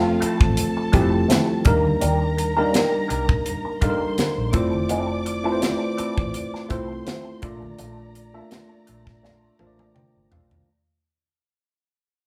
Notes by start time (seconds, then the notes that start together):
Already playing: F1 F3 A3 C4 F4 A4 F5
0.05 muted clean electric guitar stroke
0.20 A3 C4 E4 A4 A5, muted fingered electric bass stroke, closed hi-hat
0.40 A1, muted clean electric guitar stroke, kick
0.57 closed hi-hat, muted conga, low conga
0.77 muted clean electric guitar stroke
0.92 F1 F3 G3 A3 C4 E4 G4 A4, kick, closed hi-hat, low conga
1.00 A3
1.12 muted clean electric guitar stroke
1.29 A3 C4 E4 A4, snare, closed hi-hat, high conga
1.47 muted clean electric guitar stroke
1.64 D#2 G3 A#3 D4 D#4 G4 A#4 A#5, kick, closed hi-hat
1.84 muted clean electric guitar stroke, high conga
2.01 D#2 A#3 D4 G4 A#4, closed hi-hat, muted conga
2.21 muted clean electric guitar stroke
2.38 muted clean electric guitar stroke, closed hi-hat, muted conga
2.57 G3 A#3 D4 D#4 G4 A#4
2.72 A#3 D4 G4 A#4, snare, closed hi-hat, high conga
2.92 muted clean electric guitar stroke
3.08 C2 A#3 D4 G4 A#4, closed hi-hat
3.29 kick
3.46 closed hi-hat, muted conga, low conga
3.65 muted clean electric guitar stroke
3.81 G3 A#3 D4 D#4 G4 A4 A#4 C5 C6, kick, closed hi-hat, low conga
3.90 A#4
4.01 muted clean electric guitar stroke
4.18 muted clean electric guitar stroke, snare, closed hi-hat, high conga
4.38 A#1
4.53 A3 C4 E4 F4 A4 C5 D5 D6, kick, closed hi-hat
4.73 muted clean electric guitar stroke, high conga
4.89 A3 C4 E4 A4, closed hi-hat, muted conga
5.09 muted clean electric guitar stroke
5.26 muted clean electric guitar stroke, closed hi-hat, muted conga
5.44 A3 C4 E4 F4 A4 B4
5.52 C5
5.61 A3 C4 E4 A4, snare, closed hi-hat, high conga
5.80 muted clean electric guitar stroke
5.98 A3 C4 E4 A4, muted fingered electric bass stroke, closed hi-hat
6.18 A1, muted clean electric guitar stroke, kick
6.34 closed hi-hat, muted conga, low conga
6.54 muted clean electric guitar stroke, snare
6.69 C2 A3 C4 E4 F4 A4 C5 C6, kick, closed hi-hat, low conga
6.90 muted clean electric guitar stroke
7.06 A3 C4 E4 A4, snare, closed hi-hat, high conga
7.27 muted clean electric guitar stroke
7.42 A#1 A3 A#3 D4 F4 A4 D5 A#5, kick, closed hi-hat
7.62 muted clean electric guitar stroke, high conga
7.78 A#1 A3 D4 F4 A4, closed hi-hat, muted conga
7.98 muted clean electric guitar stroke
8.15 muted clean electric guitar stroke, closed hi-hat, muted conga
8.34 A3 A#3 D4 F4 A4 E5
8.51 A3 D4 F4 A4, snare, closed hi-hat, high conga
8.71 muted clean electric guitar stroke
8.87 A#1 A3 D4 F4 A4, closed hi-hat
9.07 muted clean electric guitar stroke, kick, snare
9.23 A3 D4 F4 A4, snare, muted conga, low conga
9.59 A1 A3 A#3 D4 F4 C5 A5, muted clean electric guitar stroke, high tom, low conga
9.67 D5
9.79 muted clean electric guitar stroke, high tom
9.95 G5, muted clean electric guitar stroke, mid tom, high conga
10.17 G1
10.31 B1 A3 D4 F4 A4 F5, floor tom
10.51 muted clean electric guitar stroke, floor tom, high conga